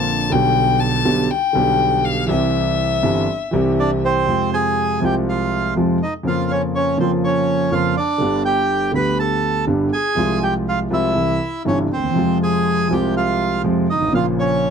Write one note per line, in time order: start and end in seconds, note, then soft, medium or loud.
0.00 0.29 A#1 medium
0.00 0.29 A#2 medium
0.00 0.28 D3 medium
0.00 0.28 A#3 medium
0.00 0.29 C4 medium
0.00 0.30 F4 medium
0.00 0.33 A5 medium
0.30 1.02 B1 medium
0.30 1.02 B2 medium
0.30 1.01 D3 medium
0.30 1.02 G3 medium
0.30 1.02 B3 medium
0.30 1.03 G4 medium
0.30 0.82 G5 medium
0.80 1.32 A5 medium
1.05 1.26 B1 medium
1.05 1.26 B2 medium
1.05 1.26 D3 medium
1.05 1.26 G3 medium
1.05 1.26 B3 medium
1.05 1.26 G4 medium
1.31 2.07 G5 medium
1.53 2.25 B1 medium
1.53 2.25 B2 medium
1.53 2.24 D3 medium
1.53 2.25 G3 medium
1.53 2.26 B3 medium
1.53 2.26 G4 medium
2.05 2.29 F5 medium
2.27 2.99 C2 medium
2.27 2.99 C3 medium
2.27 2.98 E3 medium
2.27 2.99 G3 medium
2.27 3.00 C4 medium
2.27 4.00 E5 medium
2.31 3.00 G4 medium
3.03 3.24 G1 medium
3.03 3.24 G2 medium
3.03 3.24 E3 medium
3.03 3.24 G3 medium
3.03 3.24 C4 medium
3.03 3.24 G4 medium
3.51 4.24 C2 medium
3.51 4.24 C3 medium
3.51 4.23 E3 medium
3.51 4.24 G3 medium
3.51 4.25 C4 medium
3.51 4.25 G4 medium
3.80 3.91 D4 medium
3.80 3.91 D5 medium
4.05 4.50 C4 medium
4.05 4.55 C5 medium
4.26 4.99 F2 medium
4.26 4.98 C3 medium
4.26 4.99 F3 medium
4.26 4.99 G#3 soft
4.26 4.99 F4 medium
4.54 5.00 G#4 medium
4.54 5.04 G#5 medium
5.00 5.72 C2 medium
5.00 5.72 C3 medium
5.00 5.72 F3 soft
5.00 5.73 G#3 medium
5.00 5.73 F4 medium
5.04 5.15 G4 soft
5.04 5.15 G5 medium
5.29 5.74 F4 soft
5.29 5.74 F5 medium
5.76 5.97 F2 medium
5.76 5.97 C3 medium
5.76 5.97 F3 medium
5.76 5.97 G#3 medium
5.76 5.97 F4 medium
6.03 6.14 D#4 soft
6.03 6.14 D#5 medium
6.23 6.95 F2 medium
6.23 6.95 C#3 medium
6.23 6.96 F3 medium
6.23 6.96 A#3 soft
6.23 6.52 F5 medium
6.27 6.97 F4 medium
6.27 6.50 F4 medium
6.51 6.63 C#4 soft
6.51 6.62 C#5 medium
6.75 6.99 C#4 medium
6.75 6.98 C#5 medium
6.97 7.68 F2 medium
6.97 7.68 C#3 medium
6.97 7.68 F3 medium
6.97 7.69 A#3 medium
6.97 7.69 F4 medium
6.97 7.11 C5 medium
7.01 7.12 C4 soft
7.24 7.70 C#4 medium
7.24 7.74 C#5 medium
7.72 7.93 F2 medium
7.72 7.93 C#3 medium
7.72 7.93 F3 medium
7.72 7.93 A#3 medium
7.72 7.93 F4 medium
7.72 7.96 F4 medium
7.72 7.95 F5 medium
7.97 8.43 D4 medium
7.97 8.42 D5 medium
8.18 8.91 G1 medium
8.18 8.91 G2 medium
8.18 8.90 D3 medium
8.18 8.90 G3 soft
8.18 8.91 B3 medium
8.22 8.92 G4 medium
8.45 8.92 G4 medium
8.45 8.91 G5 medium
8.92 9.64 D2 medium
8.92 9.64 D3 medium
8.92 9.64 G3 medium
8.92 9.64 B3 medium
8.92 9.18 B5 medium
8.96 9.65 G4 medium
8.96 9.18 B4 medium
9.19 9.65 A4 medium
9.19 9.65 A5 medium
9.67 9.88 G1 medium
9.67 9.88 G2 medium
9.67 9.88 D3 medium
9.67 9.88 G3 soft
9.67 9.88 B3 medium
9.67 9.88 G4 medium
9.93 10.39 G#4 medium
9.93 10.44 G#5 medium
10.15 10.87 C2 medium
10.15 10.87 C3 medium
10.15 10.87 F3 medium
10.15 10.88 G#3 medium
10.15 10.88 F4 medium
10.43 10.54 G4 medium
10.43 10.54 G5 medium
10.68 10.79 F4 medium
10.68 10.80 F5 medium
10.90 11.12 C2 medium
10.90 11.12 C3 medium
10.90 11.12 F3 soft
10.90 11.12 G#3 soft
10.90 11.63 E4 medium
10.90 11.12 F4 medium
10.90 11.63 E5 medium
11.15 11.36 C2 medium
11.15 11.37 C3 medium
11.15 11.36 E3 medium
11.15 11.37 G3 soft
11.15 11.37 E4 medium
11.65 11.87 G1 medium
11.65 11.87 G2 medium
11.65 11.86 C3 soft
11.65 11.87 E3 soft
11.65 11.87 G3 medium
11.65 11.78 C#4 soft
11.65 11.87 E4 medium
11.65 11.79 C#5 medium
11.93 12.03 D2 soft
11.93 12.38 C4 medium
11.93 12.38 C5 medium
12.03 12.09 D#2 soft
12.09 12.16 E2 medium
12.14 12.87 F2 medium
12.14 12.86 C3 soft
12.14 12.87 F3 medium
12.14 12.87 G#3 medium
12.18 12.88 F4 medium
12.43 12.88 G#4 medium
12.43 12.93 G#5 medium
12.88 13.61 C2 medium
12.88 12.90 C3 medium
12.88 13.61 C3 medium
12.88 13.61 F3 soft
12.88 13.62 G#3 medium
12.88 13.15 G4 soft
12.93 13.62 F4 medium
12.93 13.15 G5 medium
13.17 13.62 F4 medium
13.17 13.62 F5 medium
13.64 13.85 F2 medium
13.64 13.85 C3 medium
13.64 13.85 F3 medium
13.64 13.85 G#3 soft
13.64 13.85 F4 medium
13.90 14.13 D#4 medium
13.90 14.13 D#5 medium
13.95 14.02 G1 soft
14.02 14.08 G#1 soft
14.07 14.14 A1 medium
14.12 14.70 A#1 medium
14.12 14.70 A#2 medium
14.12 14.70 C#3 medium
14.12 14.70 F3 medium
14.12 14.70 A#3 soft
14.12 14.26 F5 medium
14.16 14.26 F4 medium
14.16 14.70 F4 medium
14.39 14.70 C#4 medium
14.39 14.70 C#5 medium